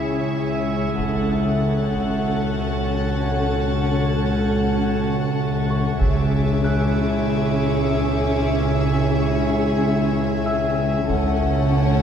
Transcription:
Already playing: double bass section C#2, cello section C#2, synth drone C#2, viola section C#4, synth texture E4 G#4 C#5, violin section G#4 E5
0.97 cello section C#2, double bass section C#2, synth drone C#2, viola section C#4, synth texture F#4 C#5 A5, violin section A4 F#5 F#6 A6, taiko
1.30 grand piano E5 E6
1.93 taiko
5.70 grand piano C#6
6.01 double bass section C#2, cello section C#2, synth drone C#2, viola section C#4, synth texture C#4 E4 G#5, violin section G#4 E5 C#6 D6, taiko
6.64 grand piano F#6
9.08 violin section C#6
10.46 grand piano E5 E6
11.09 double bass section C#2, cello section C#2, synth drone C#2, viola section C#4, synth texture F#4 C#5 A5, violin section A4 C#5 F#5, taiko
11.74 violin section D7

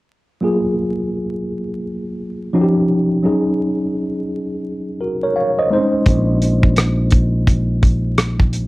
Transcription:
0.41 tine electric piano F#3 A#3 F4 G#4
2.53 tine electric piano F3 C#4 D#4 F#4
2.61 tine electric piano G4
3.23 tine electric piano F#3 C#4 D#4 G#4
5.01 tine electric piano F#4 A#4
5.23 tine electric piano A#4 C#5
5.36 tine electric piano C#5 F5
5.59 tine electric piano C5 D#5
5.70 tine electric piano G#3 C4 D#4 C5
5.78 tine electric piano C#4
6.06 fingered electric bass A#1, kick, closed hi-hat
6.42 closed hi-hat
6.63 kick
6.76 cross-stick, closed hi-hat
7.11 kick, closed hi-hat
7.47 kick, closed hi-hat
7.83 kick, closed hi-hat
8.18 cross-stick, closed hi-hat
8.40 kick
8.53 closed hi-hat

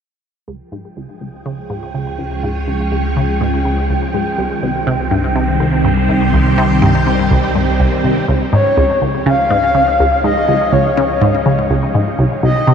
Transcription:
0.48 synth arpeggio sound C#2, synth drone C#2, string machine F3, synth texture G5
0.72 synth arpeggio sound G#2
0.89 string machine G#3 G#4
0.97 synth arpeggio sound C#2
1.21 synth arpeggio sound C#2
1.46 synth arpeggio sound C#3
1.54 string machine C#4
1.60 string machine C#5
1.70 synth arpeggio sound G#2
1.94 synth arpeggio sound C#3
2.19 synth arpeggio sound C#2
2.43 synth arpeggio sound G#2
2.68 synth arpeggio sound C#2
2.92 synth arpeggio sound C#2
3.16 synth arpeggio sound C#3
3.41 synth arpeggio sound G#2
3.65 synth arpeggio sound C#3
3.90 synth arpeggio sound C#2
4.14 synth arpeggio sound G#2
4.38 synth arpeggio sound C2, synth drone C2, string machine D#3
4.58 string machine C4
4.63 synth arpeggio sound C2
4.87 synth arpeggio sound C3, string machine G3
5.11 synth arpeggio sound G2
5.36 synth arpeggio sound C3
5.60 synth arpeggio sound C2, string machine G4
5.85 synth arpeggio sound G2
6.00 string machine C5
6.09 synth arpeggio sound C2
6.33 synth arpeggio sound C2
6.58 synth arpeggio sound C3
6.82 synth arpeggio sound G2
7.07 synth arpeggio sound C3
7.31 synth arpeggio sound C2
7.55 synth arpeggio sound G2
7.80 synth arpeggio sound C2
8.04 synth arpeggio sound C2
8.28 synth arpeggio sound C#2, synth drone C#2, string machine F3, synth texture G5
8.43 string machine C#4
8.53 synth arpeggio sound G#2, soft synth lead C#5
8.57 string machine G#3
8.77 synth arpeggio sound C#2
9.02 synth arpeggio sound C#2
9.26 synth arpeggio sound C#3, soft synth lead F5
9.50 synth arpeggio sound G#2
9.75 synth arpeggio sound C#3, string machine G#4
10.00 synth arpeggio sound C#2
10.04 string machine C#5
10.24 synth arpeggio sound G#2, soft synth lead D#5
10.48 synth arpeggio sound C#2
10.72 synth arpeggio sound C#2, soft synth lead C#5
10.97 synth arpeggio sound C#3
11.21 synth arpeggio sound G#2
11.46 synth arpeggio sound C#3
11.70 synth arpeggio sound C#2
11.95 synth arpeggio sound G#2
12.19 synth arpeggio sound C2, synth drone C2, string machine D#3
12.39 string machine G3
12.43 synth arpeggio sound C2, soft synth lead D#5
12.48 string machine C5
12.67 synth arpeggio sound C3

